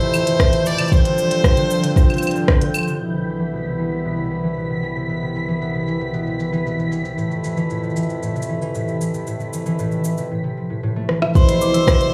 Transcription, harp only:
0.01 0.45 C3 medium
0.14 0.25 E3 medium
0.27 0.58 E3 loud
0.40 0.58 A2 medium
0.53 0.78 C3 medium
0.66 0.84 E3 medium
0.79 0.90 C3 medium
0.91 1.10 C3 medium
1.05 1.49 D3 medium
1.18 1.30 F3 medium
1.31 1.49 F3 loud
1.44 1.62 C3 medium
1.57 1.82 D3 medium
1.70 1.89 F3 medium
1.83 2.02 D3 medium
1.96 2.15 C3 medium
2.09 2.54 D3 medium
2.22 2.34 F3 medium
2.35 2.54 F3 loud
2.48 2.67 C3 medium
2.61 2.86 D3 medium
2.74 2.93 F3 loud
2.87 3.06 D3 medium
3.00 3.19 B2 medium
3.13 3.58 C3 medium
3.27 3.38 E3 medium
3.39 3.58 E3 medium
3.53 3.71 B2 medium
3.66 3.91 C3 medium
3.79 3.97 E3 medium
3.92 4.10 C3 medium
4.05 4.23 B2 medium
4.18 4.62 C3 medium
4.31 4.42 E3 medium
4.44 4.62 E3 medium
4.57 4.75 B2 medium
4.70 4.95 C3 medium
4.83 5.02 E3 medium
4.96 5.15 C3 medium
5.09 5.28 B2 medium
5.22 5.67 C3 medium
5.35 5.47 E3 medium
5.48 5.67 E3 medium
5.61 5.80 B2 medium
5.75 5.99 C3 medium
5.87 6.06 E3 medium
6.01 6.19 C3 medium
6.14 6.32 B2 medium
6.27 6.71 C3 medium
6.39 6.51 E3 medium
6.52 6.71 E3 medium
6.66 6.84 B2 medium
6.79 7.03 C3 medium
6.91 7.10 E3 medium
7.04 7.23 C3 medium
7.17 7.36 A2 medium
7.31 7.75 C3 medium
7.44 7.56 E3 medium
7.57 7.89 E3 medium
7.70 7.89 A2 medium
7.83 8.08 C3 medium
7.96 8.15 E3 medium
8.09 8.28 C3 medium
8.22 8.41 A2 medium
8.36 8.80 C3 medium
8.49 8.61 E3 medium
8.62 8.93 E3 medium
8.75 8.93 A2 medium
8.88 9.13 C3 medium
9.01 9.19 E3 medium
9.14 9.32 C3 medium
9.27 9.45 A2 medium
9.40 9.84 C3 medium
9.53 9.65 E3 medium
9.66 9.97 E3 medium
9.79 9.97 A2 medium
9.92 10.17 C3 medium
10.05 10.23 E3 medium
10.18 10.36 C3 medium
10.31 10.49 A2 medium
10.44 10.75 C3 medium
10.57 11.21 F3 medium
10.70 10.82 A2 medium
10.83 11.41 A2 medium
10.96 12.14 A3 medium
11.09 11.41 E3 medium
11.22 11.41 F3 medium
11.35 11.54 B2 medium
11.49 11.93 C3 medium
11.61 11.73 E3 medium
11.74 11.93 E3 medium
11.88 12.06 B2 medium
12.01 12.14 C3 medium

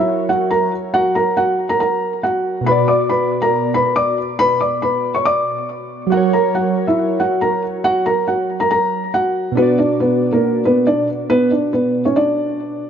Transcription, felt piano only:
0.00 0.27 E4 medium
0.00 0.27 E5 medium
0.29 0.50 F#4 medium
0.29 0.49 F#5 medium
0.51 0.71 A#4 medium
0.51 0.71 A#5 medium
0.94 1.14 F#4 medium
0.94 1.14 F#5 loud
1.15 1.36 A#4 medium
1.15 1.35 A#5 medium
1.37 1.68 F#4 medium
1.37 1.67 F#5 medium
1.69 1.79 A#4 medium
1.69 1.79 A#5 medium
1.80 2.21 A#4 medium
1.80 2.21 A#5 medium
2.23 2.64 F#4 medium
2.23 2.64 F#5 medium
2.66 2.87 B4 medium
2.66 2.87 B5 medium
2.88 3.09 D5 medium
2.88 3.08 D6 medium
3.09 3.40 B4 medium
3.09 3.40 B5 medium
3.42 3.73 A#4 medium
3.42 3.72 A#5 medium
3.74 3.95 B4 medium
3.74 3.94 B5 medium
3.96 4.16 D5 medium
3.96 4.16 D6 medium
4.39 4.60 B4 medium
4.39 4.59 B5 loud
4.61 4.81 D5 medium
4.61 4.81 D6 medium
4.82 5.13 B4 medium
4.82 5.13 B5 medium
5.15 5.25 C#5 medium
5.15 5.25 C#6 medium
5.25 6.08 D5 medium
5.25 6.08 D6 medium
6.12 6.32 F#4 medium
6.12 6.32 F#5 medium
6.33 6.54 A#4 medium
6.33 6.53 A#5 medium
6.55 6.86 F#4 medium
6.55 6.85 F#5 medium
6.87 7.18 E4 medium
6.87 7.18 E5 medium
7.20 7.40 F#4 medium
7.20 7.40 F#5 medium
7.41 7.62 A#4 medium
7.41 7.61 A#5 medium
7.84 8.05 F#4 medium
7.84 8.04 F#5 loud
8.06 8.27 A#4 medium
8.06 8.26 A#5 medium
8.28 8.58 F#4 medium
8.28 8.58 F#5 medium
8.60 8.70 A#4 medium
8.60 8.69 A#5 medium
8.71 9.12 A#4 medium
8.71 9.11 A#5 medium
9.14 9.55 F#4 medium
9.14 9.55 F#5 medium
9.57 9.78 B3 medium
9.57 9.77 B4 medium
9.79 9.99 D4 medium
9.79 9.99 D5 medium
10.00 10.31 B3 medium
10.00 10.31 B4 medium
10.33 10.63 A#3 medium
10.33 10.63 A#4 medium
10.65 10.86 B3 medium
10.65 10.85 B4 medium
10.87 11.07 D4 medium
10.87 11.07 D5 medium
11.30 11.50 B3 medium
11.30 11.50 B4 loud
11.51 11.72 D4 medium
11.51 11.71 D5 medium
11.73 12.04 B3 medium
11.73 12.03 B4 medium
12.05 12.16 C#4 medium
12.05 12.15 C#5 medium
12.16 12.90 D4 medium
12.16 12.90 D5 medium

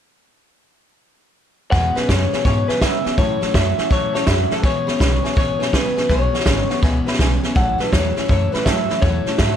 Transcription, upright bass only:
1.73 1.95 E2 medium
1.97 muted upright bass stroke medium
2.09 2.32 F#2 medium
2.33 muted upright bass stroke medium
2.45 2.68 G#2 medium
2.69 muted upright bass stroke medium
2.82 3.04 C#3 medium
3.06 muted upright bass stroke medium
3.18 3.41 A2 medium
3.43 muted upright bass stroke medium
3.54 3.77 F#2 medium
3.79 muted upright bass stroke medium
4.15 muted upright bass stroke soft
4.28 4.50 F#2 medium
4.51 muted upright bass stroke medium
4.88 muted upright bass stroke soft
5.01 5.23 B1 medium
5.37 5.59 G#1 medium
5.61 muted upright bass stroke soft
5.74 5.95 A1 medium
5.97 muted upright bass stroke soft
6.09 6.33 B1 medium
6.46 6.69 G#1 medium
6.70 muted upright bass stroke medium
6.83 7.06 C#2 medium
7.06 muted upright bass stroke medium
7.19 7.42 B1 medium
7.44 muted upright bass stroke medium
7.56 7.79 A1 medium
7.80 muted upright bass stroke medium
7.93 8.16 E2 medium
8.18 muted upright bass stroke medium
8.29 8.52 F#2 medium
8.54 muted upright bass stroke medium
8.66 8.89 A2 medium
8.90 muted upright bass stroke medium
9.03 9.25 E2 medium
9.26 muted upright bass stroke medium
9.39 9.56 G#2 medium

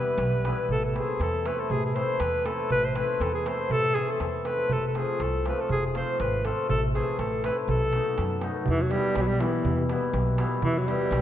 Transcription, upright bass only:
0.18 0.48 B1 loud
0.68 0.99 A1 medium
1.20 1.50 E2 medium
1.70 2.00 A1 medium
2.20 2.50 E2 medium
2.70 3.01 A1 medium
3.20 3.50 E2 loud
3.70 4.00 A1 medium
4.20 4.50 E2 medium
4.70 5.00 F1 medium
5.20 5.50 C2 medium
5.69 5.99 F1 medium
6.20 6.50 G#1 loud
6.70 6.99 A1 medium
7.19 7.48 A1 medium
7.68 7.98 B1 medium
8.18 8.48 F#2 loud
8.68 8.97 E2 medium
9.16 9.45 B1 loud
9.65 9.95 E2 medium
10.13 10.43 B1 loud
10.62 10.92 E2 loud
11.11 11.21 B1 loud

